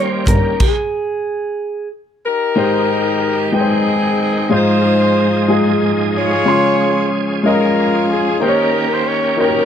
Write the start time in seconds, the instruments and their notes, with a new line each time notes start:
Already playing: grand piano D#3 G3 C#4 D#4 A#4, tonewheel organ D#3 G3 A#3 C#4 G4, clean electric guitar C5
0.27 double bass G1, clean electric guitar A#4, kick, closed hi-hat
0.60 clean electric guitar G#4, kick, crash
2.25 horn section D#4 G4 A#4
2.55 grand piano G#2 G#3 D#4 G4 C5, tonewheel organ D#3 G#3 G5
3.52 grand piano G#3 D#4 B4 G5
3.56 horn section C4 D#4 G#4
3.61 grand piano C5
4.22 horn section G#4
4.49 grand piano G#2 G#3 D#4 F4 C5, tonewheel organ G#2 F3 D#4 G#4
4.53 horn section D#4 F4 C5
5.48 grand piano G#3 D#4 F4 G#4
6.17 horn section F4 G#4 C#5
6.46 grand piano C#3 G#3 C#4 F4 C6, tonewheel organ C#4
7.43 grand piano G#3 C#4 F4 D#5, horn section F4 A#4
8.11 horn section G#4
8.40 grand piano D#3 A#3 D#4 G4 C5, tonewheel organ D#3 A#3 G5, horn section A#4
8.44 horn section C#4 G4
8.49 grand piano C#5
8.92 horn section C5
9.08 horn section C#5
9.36 grand piano A#3 D#4 F#4 C#5
9.41 horn section C#4 G4 A#4, grand piano G4